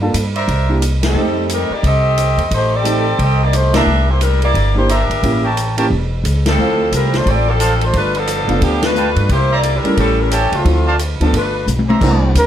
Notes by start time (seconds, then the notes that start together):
Already playing: G2
0.01 A#3 D4 F4 A4
0.14 G2, hi-hat pedal, ride
0.35 A#4 C5 D5 E5, ride
0.48 C2, kick, ride
0.69 A#3 D4 E4 G4
0.82 hi-hat pedal, ride
1.03 G3 C4 D#4 A4, snare, ride
1.14 F2 A3 C4 D#4 G4
1.50 G3 C4 D#4 A#4, hi-hat pedal, ride
1.70 A#3 D5, muted upright bass stroke
1.74 D#4 G4
1.83 C2 C4 G4 A4, kick, ride
1.87 D#5
2.18 hi-hat pedal, ride
2.37 E2, ride
2.51 A1, kick, ride
2.55 A3 D#4 G4 C5
2.76 C4 G4 A4 D5
2.84 A3 C4 D#4 G4, hi-hat pedal, ride
3.19 C2 C4 G4 A4 D#5, kick, ride
3.43 A#3 D#4 G4 D5
3.53 A3 D#4 G4 C5, hi-hat pedal, ride
3.73 A#3 D4 E4 G4 A#4 C5 D5 E5 A#5, snare, ride
3.77 D4
3.86 C2
4.10 A#3 E4 G4 C5
4.21 G3 D4 E4 A#4, hi-hat pedal, ride
4.42 A#3 E4 G4 D5, ride
4.54 G1, kick, ride
4.75 A#3 D4 E4 G4 C5
4.89 D4 G4 A#4 C5 D5 E5 A#5, hi-hat pedal, ride
5.09 G1, ride
5.22 A1 A#3 C#4 E4 G4, kick, ride
5.44 A#4 C#5 G5 A5
5.57 hi-hat pedal, ride
5.77 A#3 C#4 E4 G4 A#4 C#5 G5 A5, ride
5.90 E1, kick
6.24 C#2, hi-hat pedal, ride
6.46 F3 C4 D4 A4, snare, ride
6.58 D2 A3 C4 E4 F4
6.92 C2 G3 C4 E4 A#4, hi-hat pedal, ride
7.14 A3 D4 F4 C5, snare, ride
7.26 A1 F4 A4 D5, kick, ride
7.30 C4
7.49 F3 C4 D4 A4
7.60 C5 D5 F5 A5, hi-hat pedal, ride
7.81 A3 D4 F4 C5, ride
7.93 G1 A3 D4 F4 B4, kick, ride
8.15 F3 B3 D4 A4, ride
8.27 hi-hat pedal, ride
8.47 F1 A3 B3 D4 F4, ride
8.61 D2 F3 B3 D4 G4, kick, ride
8.82 A3 D4 F4 B4, snare, ride
8.96 B4 F5 G5 A5, hi-hat pedal
9.16 G2, ride
9.29 C2 A#3 E4 G4 C5, kick, ride
9.51 A#3 E4 G4 C5 D5 E5 A#5
9.63 hi-hat pedal, ride
9.77 G3 D4 E4 A#4
9.84 G3 A3 C#4 E4, muted upright bass stroke, ride
9.97 A1 G3 C#4 E4 A4, kick, ride
10.20 G3 C#4 E4 A#4
10.31 E3 A3 C#4 G4 C#5 E5 G5 A5, hi-hat pedal, ride
10.52 C#2 A3 C4 D4 F4, ride
10.64 D2 F3 A3 C4 E4, kick, ride
10.87 C5 D5 F5 A5
10.99 hi-hat pedal, ride
11.20 D2 F3 A3 B3 C4 D4 A4, ride
11.33 G1 A3 D4 F4 B4, kick, ride
11.66 B1, hi-hat pedal, high tom
11.79 high tom
11.89 C5 D5 E5 A#5, high tom
12.01 C2 E3 G3 A#3 C4 D4 E4 A#4, kick, crash
12.35 D2 A#4, kick, hi-hat pedal, ride